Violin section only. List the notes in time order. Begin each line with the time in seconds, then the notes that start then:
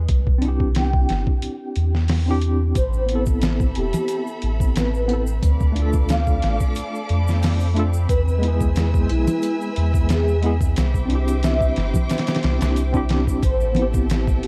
2.76 A4 E5 B5
5.42 A4 D5 F5 D6
8.10 B4 E5 G#5 E6
10.78 C5 G5 D6
13.42 A4 E5 G5 A5